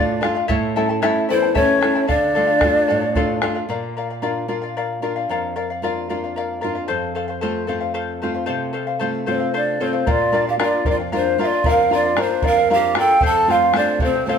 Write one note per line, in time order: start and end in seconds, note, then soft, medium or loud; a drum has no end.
0.00 0.21 A2 medium
0.00 0.22 A3 medium
0.00 0.23 D4 soft
0.00 0.27 D4 medium
0.00 0.23 F4 medium
0.00 0.20 A4 medium
0.00 0.21 D5 medium
0.00 0.26 D5 medium
0.00 0.21 F5 medium
0.21 0.44 A3 medium
0.21 0.45 D4 soft
0.21 0.45 F4 medium
0.21 0.35 A4 medium
0.21 0.35 D5 medium
0.21 0.34 F5 medium
0.21 bombo rim medium
0.35 0.48 D5 medium
0.35 0.48 F5 medium
0.48 1.01 A2 medium
0.48 0.75 E4 medium
0.48 0.76 A4 medium
0.48 0.76 C#5 medium
0.48 0.75 E5 medium
0.48 0.76 A5 medium
0.48 bombo low medium
0.76 1.02 A3 soft
0.76 1.02 C#4 soft
0.76 0.89 E4 medium
0.76 1.03 E4 medium
0.76 0.89 A4 medium
0.76 0.89 E5 medium
0.76 0.88 A5 medium
0.89 1.01 E4 soft
0.89 1.01 A4 medium
0.89 1.01 A5 medium
1.02 1.46 A3 medium
1.02 1.46 C#4 soft
1.02 1.29 E4 medium
1.02 1.46 E4 medium
1.02 1.29 A4 medium
1.02 1.29 C#5 medium
1.02 1.27 E5 medium
1.02 1.29 A5 loud
1.02 bombo rim medium
1.16 bombo rim soft
1.29 1.82 E2 medium
1.29 1.43 E4 medium
1.29 1.55 E4 medium
1.29 1.42 A4 medium
1.29 1.54 C5 loud
1.29 1.42 E5 medium
1.29 1.41 A5 medium
1.29 bombo rim soft
1.42 1.54 E4 soft
1.42 1.54 A4 soft
1.42 1.54 A5 soft
1.54 1.83 A3 soft
1.54 2.06 C#4 medium
1.54 1.83 C#4 soft
1.54 1.80 E4 medium
1.54 1.83 E4 medium
1.54 1.81 A4 medium
1.54 1.82 C#5 medium
1.54 2.06 C#5 medium
1.54 1.80 E5 medium
1.54 1.81 A5 medium
1.54 bombo low medium
1.81 2.05 A3 soft
1.81 2.05 C#4 soft
1.81 1.95 E4 medium
1.81 2.05 E4 medium
1.81 1.94 A4 medium
1.81 1.95 E5 medium
1.81 1.94 A5 medium
1.81 bombo rim medium
1.95 2.07 E4 soft
1.95 2.06 A4 soft
1.95 2.09 A5 soft
2.07 2.61 D3 medium
2.07 3.39 D4 medium
2.07 2.34 A4 medium
2.07 2.35 D5 medium
2.07 3.38 D5 loud
2.07 2.35 F5 medium
2.07 bombo rim soft
2.07 bombo low medium
2.35 2.62 A3 soft
2.35 2.63 D4 soft
2.35 2.63 F4 medium
2.35 2.49 A4 medium
2.35 2.48 D5 medium
2.35 2.46 F5 medium
2.35 bombo rim soft
2.47 2.60 D5 soft
2.47 2.60 F5 soft
2.60 3.06 A3 medium
2.60 3.06 D4 soft
2.60 3.06 F4 medium
2.60 2.86 A4 medium
2.60 2.87 D5 medium
2.60 2.88 F5 medium
2.60 bombo rim medium
2.60 bombo low medium
2.88 3.42 A2 medium
2.88 3.02 A4 medium
2.88 3.02 D5 medium
2.88 3.01 F5 medium
2.88 bombo rim soft
3.02 3.15 D5 soft
3.02 3.16 F5 medium
3.15 3.41 A3 soft
3.15 3.41 D4 soft
3.15 3.42 F4 medium
3.15 3.41 A4 medium
3.15 3.42 D5 medium
3.15 3.42 F5 medium
3.15 bombo rim soft
3.15 bombo low medium
3.28 bombo rim soft
3.42 3.64 A3 soft
3.42 3.64 D4 soft
3.42 3.64 F4 medium
3.42 3.56 A4 medium
3.42 3.55 D5 medium
3.42 3.54 F5 medium
3.42 bombo rim medium
3.55 3.68 D5 soft
3.55 3.69 F5 medium
3.55 bombo rim soft
3.69 5.25 A#2 medium
3.69 3.95 A#4 medium
3.69 3.96 D5 medium
3.69 3.96 F5 medium
3.97 4.10 A#4 medium
3.97 4.10 D5 medium
3.97 4.09 F5 medium
4.10 4.22 D5 soft
4.10 4.22 F5 soft
4.22 4.47 A#3 soft
4.22 4.47 D4 soft
4.22 4.48 F4 soft
4.22 4.47 A#4 medium
4.22 4.48 D5 medium
4.22 4.48 F5 medium
4.48 5.01 A#3 soft
4.48 5.01 D4 soft
4.48 5.01 F4 soft
4.48 4.62 A#4 medium
4.48 4.62 D5 medium
4.48 4.61 F5 medium
4.62 4.76 D5 soft
4.62 4.76 F5 medium
4.77 5.01 A#4 medium
4.77 5.02 D5 medium
4.77 5.03 F5 medium
5.02 5.54 A#3 soft
5.02 5.54 D4 soft
5.02 5.54 F4 soft
5.02 5.16 A#4 medium
5.02 5.16 D5 medium
5.02 5.15 F5 medium
5.16 5.30 D5 soft
5.16 5.29 F5 medium
5.29 6.85 F2 medium
5.29 5.55 A#4 medium
5.29 5.55 D5 medium
5.29 5.55 F5 medium
5.56 5.69 A#4 medium
5.56 5.69 D5 medium
5.56 5.69 F5 medium
5.70 5.83 D5 soft
5.70 5.83 F5 medium
5.82 6.09 A#3 soft
5.82 6.09 D4 soft
5.82 6.09 F4 medium
5.82 6.08 A#4 medium
5.82 6.09 D5 medium
5.82 6.09 F5 medium
6.09 6.61 A#3 soft
6.09 6.61 D4 soft
6.09 6.61 F4 soft
6.09 6.23 A#4 medium
6.09 6.23 D5 medium
6.09 6.23 F5 medium
6.24 6.36 D5 soft
6.24 6.36 F5 soft
6.36 6.60 A#4 medium
6.36 6.61 D5 medium
6.36 6.61 F5 medium
6.61 6.89 A#3 soft
6.61 6.89 D4 soft
6.61 6.89 F4 soft
6.61 6.75 A#4 medium
6.61 6.75 D5 medium
6.61 6.74 F5 medium
6.75 6.88 D5 soft
6.75 6.87 F5 soft
6.88 8.45 F2 medium
6.88 7.14 A4 medium
6.88 7.14 C5 medium
6.88 7.15 F5 medium
7.15 7.29 A4 medium
7.15 7.29 C5 medium
7.15 7.27 F5 medium
7.28 7.41 C5 soft
7.28 7.42 F5 soft
7.41 7.67 A3 soft
7.41 7.68 C4 soft
7.41 7.68 F4 soft
7.41 7.66 A4 medium
7.41 7.67 C5 medium
7.41 7.68 F5 medium
7.67 8.20 A3 soft
7.67 8.20 C4 soft
7.67 8.20 F4 soft
7.67 7.81 A4 medium
7.67 7.80 C5 medium
7.67 7.79 F5 medium
7.81 7.93 C5 soft
7.81 7.94 F5 soft
7.94 8.20 A4 medium
7.94 8.21 C5 medium
7.94 8.21 F5 medium
8.22 8.73 A3 soft
8.22 8.74 C4 soft
8.22 8.74 F4 soft
8.22 8.35 A4 medium
8.22 8.34 C5 medium
8.22 8.33 F5 medium
8.34 8.45 C5 soft
8.34 8.46 F5 soft
8.46 10.03 C3 medium
8.46 8.72 A4 medium
8.46 8.72 C5 medium
8.46 8.73 F5 medium
8.73 8.87 A4 medium
8.73 8.87 C5 medium
8.73 8.86 F5 medium
8.87 8.99 C5 soft
8.87 9.00 F5 medium
8.99 9.26 A3 soft
8.99 9.26 C4 soft
8.99 9.27 F4 soft
8.99 9.25 A4 medium
8.99 9.26 C5 medium
8.99 9.26 F5 medium
9.26 9.79 A3 soft
9.26 9.79 C4 soft
9.26 9.53 C4 medium
9.26 9.79 F4 soft
9.26 9.40 A4 medium
9.26 9.40 C5 medium
9.26 9.39 F5 medium
9.30 9.36 C#5 medium
9.35 9.54 C5 medium
9.40 9.53 C5 soft
9.40 9.53 F5 soft
9.54 9.83 D4 medium
9.54 9.79 A4 medium
9.54 9.80 C5 medium
9.54 9.84 D5 medium
9.54 9.80 F5 medium
9.80 10.06 A3 soft
9.80 10.06 C4 soft
9.80 10.07 C4 medium
9.80 10.06 F4 soft
9.80 9.94 A4 medium
9.80 9.93 C5 medium
9.80 9.88 C#5 medium
9.80 9.92 F5 medium
9.87 10.08 C5 medium
9.93 10.07 C5 soft
9.93 10.06 F5 soft
10.06 10.58 A#2 medium
10.06 10.45 F4 medium
10.06 10.31 A#4 medium
10.06 10.33 D5 medium
10.06 10.45 D5 medium
10.06 10.33 F5 medium
10.06 bombo low medium
10.32 10.58 A#3 medium
10.32 10.59 D4 soft
10.32 10.59 F4 soft
10.32 10.46 A#4 medium
10.32 10.47 D5 medium
10.32 10.46 F5 medium
10.32 bombo rim soft
10.47 10.54 G4 medium
10.47 10.59 D5 soft
10.47 10.58 F5 soft
10.47 10.55 F5 medium
10.59 11.01 A#3 soft
10.59 11.02 D4 soft
10.59 11.02 F4 medium
10.59 10.86 F4 medium
10.59 10.84 A#4 medium
10.59 10.85 D5 medium
10.59 10.86 F5 medium
10.59 bombo rim medium
10.63 10.86 D5 medium
10.85 11.37 F2 medium
10.85 10.99 A#4 medium
10.85 10.99 D5 medium
10.85 10.98 F5 medium
10.85 bombo low medium
10.89 10.97 F4 medium
10.89 10.95 D5 medium
11.00 11.12 D5 soft
11.00 11.12 F5 soft
11.12 11.37 A#3 soft
11.12 11.38 D4 soft
11.12 11.38 F4 soft
11.12 11.38 A#4 medium
11.12 11.38 C5 medium
11.12 11.39 D5 medium
11.12 11.39 F5 medium
11.12 bombo rim soft
11.17 11.39 D4 medium
11.38 11.80 A#3 soft
11.38 11.81 D4 soft
11.38 11.81 F4 medium
11.38 11.52 A#4 medium
11.38 11.52 D5 medium
11.38 11.47 E5 medium
11.38 11.51 F5 medium
11.42 11.69 F4 medium
11.42 11.70 D5 medium
11.52 11.65 D5 soft
11.52 11.65 F5 soft
11.64 12.15 F2 medium
11.64 11.91 A#4 medium
11.64 11.92 A#4 medium
11.64 11.91 D5 medium
11.64 11.92 F5 medium
11.64 bombo low medium
11.68 11.93 F5 medium
11.90 12.16 A#3 soft
11.90 12.16 D4 soft
11.90 12.17 F4 soft
11.90 12.23 F4 medium
11.90 12.04 A#4 medium
11.90 12.05 D5 medium
11.90 12.04 F5 medium
11.90 bombo rim soft
11.95 12.22 D5 medium
12.05 12.15 D5 soft
12.05 12.16 F5 soft
12.17 12.59 A#3 soft
12.17 12.59 D4 soft
12.17 12.59 F4 medium
12.17 12.41 A#4 medium
12.17 12.47 C5 medium
12.17 12.43 D5 medium
12.17 12.43 F5 medium
12.17 bombo rim medium
12.21 12.48 D4 medium
12.42 12.94 F2 medium
12.42 12.56 A#4 medium
12.42 12.56 D5 medium
12.42 12.55 F5 medium
12.42 12.71 F5 loud
12.42 bombo low medium
12.47 12.71 A#4 medium
12.56 12.70 D5 soft
12.56 12.69 F5 medium
12.69 12.94 A#3 soft
12.69 12.94 D4 soft
12.69 12.95 F4 medium
12.69 12.96 A#4 medium
12.69 12.96 D5 medium
12.69 12.97 F5 medium
12.69 12.95 F5 medium
12.69 bombo rim soft
12.73 12.96 G4 medium
12.82 bombo rim soft
12.95 13.16 A#3 soft
12.95 13.17 D4 soft
12.95 13.17 F4 medium
12.95 13.09 A#4 medium
12.95 13.10 D5 medium
12.95 13.09 F5 medium
12.95 13.22 G5 medium
12.95 bombo rim medium
13.00 13.22 A4 medium
13.10 13.23 D5 soft
13.10 13.22 F5 medium
13.21 13.72 F2 medium
13.21 13.47 A4 medium
13.21 13.48 C5 medium
13.21 13.49 F5 medium
13.21 bombo low medium
13.26 13.52 A4 loud
13.26 13.52 A5 loud
13.48 13.72 A3 soft
13.48 13.73 C4 soft
13.48 13.73 F4 medium
13.48 13.76 F4 medium
13.48 13.61 A4 medium
13.48 13.62 C5 medium
13.48 13.61 F5 medium
13.48 13.76 F5 medium
13.48 bombo rim soft
13.62 13.75 C5 soft
13.62 13.75 F5 soft
13.73 14.15 A3 soft
13.73 14.16 C4 medium
13.73 14.16 F4 medium
13.73 14.00 A4 medium
13.73 14.01 C5 medium
13.73 14.00 D5 medium
13.73 14.01 F5 medium
13.73 bombo rim medium
13.78 14.01 D4 medium
13.99 14.38 C3 medium
13.99 14.14 A4 medium
13.99 14.14 C5 medium
13.99 14.26 C5 medium
13.99 14.14 F5 medium
13.99 bombo low medium
14.05 14.27 C4 medium
14.15 14.28 C5 soft
14.15 14.27 F5 medium
14.26 14.38 A3 medium
14.26 14.38 C4 soft
14.26 14.38 F4 medium
14.26 14.38 A4 medium
14.26 14.38 C5 medium
14.26 14.32 C#5 medium
14.26 14.38 F5 medium
14.26 bombo rim soft
14.30 14.38 C4 medium
14.30 14.38 C5 loud